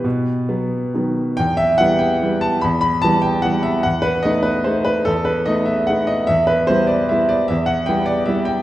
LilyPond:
<<
  \new Staff \with { instrumentName = "Grand piano" } { \time 3/4 \key e \minor \tempo 4 = 147 <g' b'>2 r4 | g''8 e''8 fis''8 g''4 a''8 | b''8 b''8 a''8 g''8 fis''8 e''8 | fis''8 b'8 dis''8 b'8 c''8 b'8 |
a'8 b'8 dis''8 e''8 fis''8 dis''8 | e''8 b'8 c''8 d''8 e''8 d''8 | e''8 fis''8 g''8 d''8 e''8 g''8 | }
  \new Staff \with { instrumentName = "Grand piano" } { \time 3/4 \key e \minor b,4 <fis b>4 <dis fis b>4 | e,4 <e g b>4 <e g b>4 | e,4 <e g b>4 <e g b>4 | e,4 <a b dis'>4 <a b dis'>4 |
e,4 <a b dis'>4 <a b dis'>4 | e,4 <g b e'>4 <g b e'>4 | e,4 <g b e'>4 <g b e'>4 | }
>>